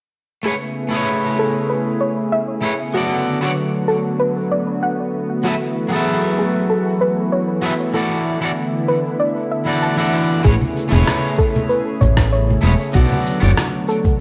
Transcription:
0.43 analog synth pad C#3 A3 B3 E4 G#4, clean electric guitar A3 E4 G#4 B4, synth arpeggio sound G#4
0.47 clean electric guitar C#5
0.89 clean electric guitar A3 E4 G#4
0.94 clean electric guitar B4 C#5
1.39 synth arpeggio sound A4
1.70 synth arpeggio sound B4
2.01 synth arpeggio sound C#5
2.32 synth arpeggio sound E5
2.62 clean electric guitar A3 E4 G#4 B4 C#5
2.94 analog synth pad D3 F#3 F#4, clean electric guitar B3 F#4 A4 D5, synth arpeggio sound F#4
3.41 clean electric guitar B3 F#4 A4 C#5 D5
3.88 synth arpeggio sound A4
4.20 synth arpeggio sound B4
4.52 synth arpeggio sound D5
4.83 synth arpeggio sound F#5
5.43 analog synth pad E3, clean electric guitar F#3 F#4 G#4 A4 B4 E5, synth arpeggio sound F#4
5.88 clean electric guitar F#3 G#4
5.93 clean electric guitar A4 B4 E5
6.39 synth arpeggio sound G#4
6.70 synth arpeggio sound A4
7.01 synth arpeggio sound B4
7.32 synth arpeggio sound C#5
7.62 clean electric guitar F#3 F#4 G#4 A4 B4 E5
7.93 analog synth pad D3 E4, clean electric guitar E3 E4 F#4 A4 D5, synth arpeggio sound A4
8.41 clean electric guitar E3 E4 F#4 A4 D5
8.88 synth arpeggio sound B4
9.20 synth arpeggio sound D5
9.52 synth arpeggio sound E5
9.65 clean electric guitar E3 E4 F#4 A4 D5
9.82 synth arpeggio sound A5
9.97 clean electric guitar E3 E4 F#4 A4 D5
10.43 fretless electric bass A1, analog synth pad C#3 A3 G#4, clean electric guitar A3 E4 G#4 B4, synth arpeggio sound G#4, kick, shaker
10.47 clean electric guitar C#5
10.61 high conga
10.77 shaker
10.89 fretless electric bass E1, clean electric guitar A3 E4 G#4
10.93 clean electric guitar B4 C#5, low conga, shaker
11.07 cross-stick, high conga, shaker
11.38 synth arpeggio sound A4, kick, shaker
11.55 high conga, shaker
11.69 synth arpeggio sound B4, shaker
12.01 fretless electric bass A1, synth arpeggio sound C#5, kick, high conga, low conga, shaker
12.17 kick, cross-stick, shaker
12.33 synth arpeggio sound C#5, shaker
12.50 high conga
12.62 fretless electric bass E1, clean electric guitar A3 E4 G#4 B4 C#5, shaker
12.81 shaker
12.93 fretless electric bass B1, analog synth pad D3 F#3 F#4, clean electric guitar B3 F#4 A4 D5, synth arpeggio sound F#4, kick, shaker
13.12 high conga
13.26 shaker
13.40 fretless electric bass F#1, clean electric guitar B3 F#4 A4 C#5 D5, low conga, shaker
13.58 cross-stick, high conga, shaker
13.89 synth arpeggio sound A4, shaker
14.04 kick, high conga, shaker

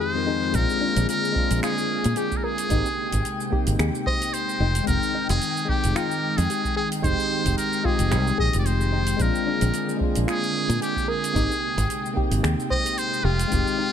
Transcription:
Already playing: tine electric piano F2 G#3 C4 D#4 G4, analog synth pad D#3 G#3 F4 G4
0.00 synth arpeggio sound G#4, muted trumpet C5, shaker
0.14 tine electric piano F2 G#3 C4 D#4 A#4, shaker
0.26 tine electric piano F2 G#3 C4 D#4 G#4, synth arpeggio sound D#4
0.43 shaker
0.51 fingered electric bass A#1, analog synth pad D3 A#3 G#4, tine electric piano G#3 C4, muted trumpet A#4, kick, open hi-hat, shaker
0.55 tine electric piano D4 F4
0.70 shaker
0.81 synth arpeggio sound D4
0.96 fingered electric bass A#1, open hi-hat, shaker
1.09 muted trumpet A#4, open hi-hat, shaker
1.25 shaker
1.32 tine electric piano G#3 C4, kick
1.36 tine electric piano D4 F4
1.51 fingered electric bass A#1, open hi-hat, shaker
1.63 synth arpeggio sound F4, muted trumpet G#4, finger snap, open hi-hat, shaker
1.78 shaker
2.04 fingered electric bass A#2, open hi-hat, shaker
2.16 muted trumpet G4, synth arpeggio sound G#4, open hi-hat, shaker
2.31 kick, shaker
2.37 muted trumpet A#4
2.44 muted trumpet G#4, synth arpeggio sound A#4
2.58 open hi-hat, shaker
2.69 fingered electric bass G#1, analog synth pad C3 G#3 G5, tine electric piano A#3 C4 D#4 G4, synth arpeggio sound D#4, kick, open hi-hat, shaker
2.86 shaker
3.12 fingered electric bass G#1, kick, open hi-hat, shaker
3.25 open hi-hat, shaker
3.41 shaker
3.50 tine electric piano A#3 C4 D#4 G4, synth arpeggio sound G4, kick
3.67 fingered electric bass G#1, open hi-hat, shaker
3.79 fingered electric bass D#2, synth arpeggio sound G#4, finger snap, open hi-hat, shaker
3.95 shaker
4.06 synth arpeggio sound C5, muted trumpet D#5, kick
4.22 open hi-hat, shaker
4.33 muted trumpet C5, open hi-hat, shaker
4.49 shaker
4.60 fingered electric bass F1, analog synth pad D#3, synth arpeggio sound D#4
4.75 open hi-hat, shaker
4.84 tine electric piano G#3 C4, muted trumpet A#4, kick, open hi-hat
4.88 fingered electric bass F1, tine electric piano D#4 G5, shaker
5.03 shaker
5.15 synth arpeggio sound D#4
5.29 fingered electric bass F1, muted trumpet G#4, open hi-hat, shaker
5.42 open hi-hat, shaker
5.57 shaker
5.65 tine electric piano G#3 C4, kick
5.69 tine electric piano D#4 G5, muted trumpet G4
5.84 fingered electric bass F1, open hi-hat, shaker
5.96 synth arpeggio sound F4, muted trumpet A#4, finger snap, open hi-hat, shaker
6.12 shaker
6.37 fingered electric bass F2, muted trumpet G#4, open hi-hat, shaker
6.50 synth arpeggio sound G4, open hi-hat, shaker
6.64 kick, shaker
6.76 synth arpeggio sound G#4, muted trumpet G#4
6.92 open hi-hat, shaker
7.02 fingered electric bass F1, tine electric piano G#3 C4 D#4 G4, synth arpeggio sound D#4, muted trumpet C5, kick, open hi-hat, shaker
7.20 shaker
7.45 fingered electric bass F1, kick, open hi-hat, shaker
7.57 muted trumpet A#4, open hi-hat, shaker
7.73 shaker
7.83 tine electric piano G#3 C4 D#4 G4, synth arpeggio sound F4, muted trumpet G#4, kick
7.99 fingered electric bass F1, open hi-hat, shaker
8.11 fingered electric bass C2, synth arpeggio sound G4, finger snap, open hi-hat, shaker
8.27 shaker
8.38 fingered electric bass A#1, synth arpeggio sound G#4, muted trumpet D#5, kick
8.53 fingered electric bass F1, open hi-hat, shaker
8.59 muted trumpet D5
8.66 muted trumpet C5, open hi-hat, shaker
8.81 shaker
8.92 synth arpeggio sound D#4
9.07 open hi-hat, shaker
9.16 fingered electric bass A#1, analog synth pad D3 A#3 G#4, tine electric piano G#3 C4, kick, open hi-hat, shaker
9.21 tine electric piano D4 F4, muted trumpet A#4
9.35 shaker
9.47 synth arpeggio sound D4
9.61 fingered electric bass A#1, open hi-hat, shaker
9.74 open hi-hat, shaker
9.89 shaker
9.96 tine electric piano G#3 C4
10.00 tine electric piano D4 F4, kick
10.15 fingered electric bass A#1, open hi-hat, shaker
10.27 synth arpeggio sound F4, muted trumpet G#4, finger snap, open hi-hat, shaker
10.44 shaker
10.69 fingered electric bass A#2, open hi-hat, shaker
10.81 muted trumpet G4, synth arpeggio sound G#4, open hi-hat, shaker
10.96 kick, shaker
11.08 muted trumpet G#4, synth arpeggio sound A#4
11.24 open hi-hat, shaker
11.33 fingered electric bass G#1, analog synth pad C3 G#3 G5, tine electric piano A#3 C4 D#4 G4, synth arpeggio sound D#4, kick, open hi-hat, shaker
11.52 shaker
11.77 fingered electric bass G#1, kick, open hi-hat, shaker
11.90 open hi-hat, shaker
12.06 shaker
12.14 tine electric piano A#3 C4 D#4 G4, synth arpeggio sound G4, kick
12.31 fingered electric bass G#1, open hi-hat, shaker
12.43 fingered electric bass D#2, synth arpeggio sound G#4, finger snap, open hi-hat, shaker
12.60 shaker
12.70 synth arpeggio sound C5, muted trumpet D#5, kick
12.86 open hi-hat, shaker
12.98 muted trumpet C5, open hi-hat, shaker
13.14 shaker
13.24 fingered electric bass F1, analog synth pad D#3, muted trumpet F4, synth arpeggio sound G4
13.39 open hi-hat, shaker
13.48 tine electric piano G#3 C4
13.52 fingered electric bass F1, tine electric piano D#4 G4, kick, open hi-hat, shaker
13.68 shaker
13.78 synth arpeggio sound D#4

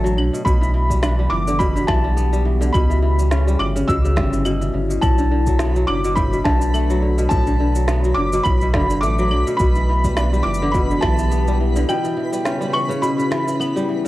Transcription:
Already playing: sub bass A1, ambient pad B2 F#3 D4, kora D3 A3 B3, felt piano A5
0.04 kora F#3, shaker
0.17 sub bass B1, kora D3, claves
0.33 kora B2, shaker
0.44 sub bass B1, kora B2, ambient pad E3, felt piano B5, kick, shaker
0.60 kora E3, ambient pad B3, shaker
0.74 kora E3
0.80 ambient pad G4
0.90 kora G3, kick, shaker
1.00 kora D4, ambient pad F#4, snare, claves, shaker
1.19 kora G3
1.30 sub bass F#1, kora E3, felt piano D6
1.48 kora D3, shaker
1.59 kora B2, felt piano B5, kick, shaker
1.76 kora D3, shaker
1.87 sub bass B1, kora E3, felt piano A5, kick, snare, claves
2.04 kora G3
2.17 kora B3, shaker
2.33 kora G3, shaker
2.45 kora E3
2.61 kora D3, shaker
2.73 sub bass C#2, kora B2, ambient pad C#3, felt piano B5, kick, claves, shaker
2.90 kora E3, shaker
3.02 kora E3
3.19 kora G3, shaker
3.31 kora C#4, snare, shaker
3.47 kora G3, shaker
3.59 sub bass G1, kora E3, ambient pad C#4, felt piano D6, claves
3.76 kora C#3, ambient pad E4, shaker
3.88 sub bass C#2, kora B2, felt piano E6, kick, shaker
4.05 kora C#3, shaker
4.16 sub bass G1, kora G3, kick, snare
4.33 kora E3, shaker
4.45 kora B2, claves, shaker
4.61 kora E3, shaker
4.74 sub bass G1, kora C#3
4.90 kora B2, shaker
5.01 sub bass B1, kora A2, ambient pad B2, synth texture B4 B5, felt piano A5, kick, claves, shaker
5.18 kora D3, shaker
5.31 kora D3, ambient pad F#3
5.47 kora F#3, ambient pad D4, kick, shaker
5.59 kora B3, snare, shaker
5.76 kora F#3, shaker
5.87 sub bass F#1, kora D3, felt piano D6, claves
6.04 kora B2, shaker
6.15 kora A2, felt piano B5, kick, shaker
6.33 kora B2, shaker
6.44 sub bass B1, kora D3, felt piano A5, kick, snare
6.61 kora D3, shaker
6.74 kora A3, claves, shaker
6.90 kora F#3, shaker
7.02 kora D3
7.18 kora B2, shaker
7.29 sub bass B1, kora A2, felt piano A5, kick, shaker
7.47 kora D3, shaker
7.60 kora D3
7.75 kora F#3, shaker
7.88 kora B3, snare, shaker
8.04 kora F#3, shaker
8.14 sub bass F#1, kora D3, felt piano D6
8.33 kora B2, shaker
8.43 sub bass B1, kora A2, felt piano B5, kick, claves, shaker
8.61 kora B2, shaker
8.74 sub bass F#1, kora D3, kick, snare
8.90 kora D3, shaker
9.01 sub bass A1, kora A3, felt piano D6, shaker
9.18 kora F#3, shaker
9.31 sub bass B1, kora D3, claves
9.47 kora B2, shaker
9.57 sub bass B1, kora B2, ambient pad E3, felt piano B5, kick, shaker
9.74 kora E3, ambient pad B3, shaker
9.89 kora E3
10.04 kora G3, kick, shaker
10.17 kora D4, snare, claves, shaker
10.33 kora G3, shaker
10.43 sub bass F#1, kora E3, felt piano D6
10.54 shaker
10.62 kora D3, ambient pad E4 G4
10.72 kora B2, felt piano B5, kick, shaker
10.91 kora D3, shaker
11.01 sub bass B1, kora E3, felt piano A5, kick, snare, claves
11.18 kora E3, shaker
11.31 kora B3, shaker
11.47 kora G3, shaker
11.60 kora E3
11.76 kora D3, shaker
11.89 kora B2, ambient pad C#3, felt piano G5, claves, shaker
12.04 kora E3, shaker
12.17 kora E3
12.23 ambient pad C#4
12.32 kora G3, shaker
12.45 kora C#4, snare, shaker
12.61 kora G3, shaker
12.73 kora E3, felt piano C#6, claves
12.89 kora C#3, ambient pad E4, shaker
13.02 kora B2, felt piano B5, shaker
13.18 kora C#3, shaker
13.31 kora E3, snare
13.48 kora E3, shaker
13.60 kora B3, claves, shaker
13.76 kora G3, shaker
13.89 kora E3
14.05 kora C#3

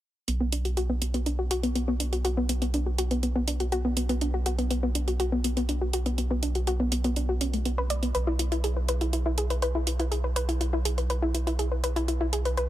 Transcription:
0.28 analog synth bass B1, synth arpeggio sound B3, closed hi-hat
0.40 synth arpeggio sound B3
0.52 synth arpeggio sound D4, closed hi-hat
0.65 synth arpeggio sound F#4, closed hi-hat
0.77 synth arpeggio sound F#4, closed hi-hat
0.90 synth arpeggio sound B3
1.02 synth arpeggio sound B3, closed hi-hat
1.14 synth arpeggio sound B3, closed hi-hat
1.26 synth arpeggio sound D4, closed hi-hat
1.39 synth arpeggio sound F#4
1.51 synth arpeggio sound F#4, closed hi-hat
1.63 synth arpeggio sound B3, closed hi-hat
1.75 synth arpeggio sound B3, closed hi-hat
1.88 synth arpeggio sound B3
2.00 synth arpeggio sound D4, closed hi-hat
2.13 synth arpeggio sound F#4, closed hi-hat
2.25 synth arpeggio sound F#4, closed hi-hat
2.37 synth arpeggio sound B3
2.49 synth arpeggio sound B3, closed hi-hat
2.62 synth arpeggio sound B3, closed hi-hat
2.74 synth arpeggio sound D4, closed hi-hat
2.86 synth arpeggio sound F#4
2.98 synth arpeggio sound F#4, closed hi-hat
3.11 synth arpeggio sound B3, closed hi-hat
3.23 synth arpeggio sound B3, closed hi-hat
3.36 synth arpeggio sound B3
3.48 synth arpeggio sound D4, closed hi-hat
3.60 synth arpeggio sound F#4, closed hi-hat
3.72 synth arpeggio sound F#4, closed hi-hat
3.85 synth arpeggio sound B3
3.97 synth arpeggio sound B3, closed hi-hat
4.09 synth arpeggio sound B3, closed hi-hat
4.21 synth arpeggio sound D4, closed hi-hat
4.34 synth arpeggio sound F#4
4.46 synth arpeggio sound F#4, closed hi-hat
4.58 synth arpeggio sound B3, closed hi-hat
4.71 synth arpeggio sound B3, closed hi-hat
4.83 synth arpeggio sound B3
4.95 synth arpeggio sound D4, closed hi-hat
5.08 synth arpeggio sound F#4, closed hi-hat
5.20 synth arpeggio sound F#4, closed hi-hat
5.32 synth arpeggio sound B3
5.44 synth arpeggio sound B3, closed hi-hat
5.57 synth arpeggio sound B3, closed hi-hat
5.69 synth arpeggio sound D4, closed hi-hat
5.81 synth arpeggio sound F#4
5.93 synth arpeggio sound F#4, closed hi-hat
6.06 synth arpeggio sound B3, closed hi-hat
6.18 synth arpeggio sound B3, closed hi-hat
6.31 synth arpeggio sound B3
6.43 synth arpeggio sound D4, closed hi-hat
6.55 synth arpeggio sound F#4, closed hi-hat
6.67 synth arpeggio sound F#4, closed hi-hat
6.80 synth arpeggio sound B3
6.92 synth arpeggio sound B3, closed hi-hat
7.04 synth arpeggio sound B3, closed hi-hat
7.16 synth arpeggio sound D4, closed hi-hat
7.29 synth arpeggio sound F#4
7.41 synth arpeggio sound C#4, closed hi-hat
7.54 synth arpeggio sound A3, closed hi-hat
7.65 synth arpeggio sound B3, closed hi-hat
7.78 synth arpeggio sound B4
7.90 synth arpeggio sound D5, closed hi-hat
8.03 synth arpeggio sound B3, closed hi-hat
8.15 analog synth bass B1, synth arpeggio sound B4, closed hi-hat
8.27 synth arpeggio sound E4
8.39 synth arpeggio sound E4, closed hi-hat
8.52 synth arpeggio sound E4, closed hi-hat
8.64 synth arpeggio sound G#4, closed hi-hat
8.77 synth arpeggio sound B4
8.88 synth arpeggio sound B4, closed hi-hat
9.01 synth arpeggio sound E4, closed hi-hat
9.13 synth arpeggio sound E4, closed hi-hat
9.26 synth arpeggio sound E4
9.38 synth arpeggio sound G#4, closed hi-hat
9.50 synth arpeggio sound B4, closed hi-hat
9.62 synth arpeggio sound B4, closed hi-hat
9.75 synth arpeggio sound E4
9.87 synth arpeggio sound E4, closed hi-hat
9.99 synth arpeggio sound E4, closed hi-hat
10.11 synth arpeggio sound G#4, closed hi-hat
10.24 synth arpeggio sound B4
10.36 synth arpeggio sound B4, closed hi-hat
10.49 synth arpeggio sound E4, closed hi-hat
10.61 synth arpeggio sound E4, closed hi-hat
10.73 synth arpeggio sound E4
10.85 synth arpeggio sound G#4, closed hi-hat
10.98 synth arpeggio sound B4, closed hi-hat
11.10 synth arpeggio sound B4, closed hi-hat
11.22 synth arpeggio sound E4
11.34 synth arpeggio sound E4, closed hi-hat
11.47 synth arpeggio sound E4, closed hi-hat
11.59 synth arpeggio sound G#4, closed hi-hat
11.72 synth arpeggio sound B4
11.84 synth arpeggio sound B4, closed hi-hat
11.96 synth arpeggio sound E4, closed hi-hat
12.08 synth arpeggio sound E4, closed hi-hat
12.21 synth arpeggio sound E4
12.33 synth arpeggio sound G#4, closed hi-hat
12.45 synth arpeggio sound B4, closed hi-hat
12.57 synth arpeggio sound B4, closed hi-hat

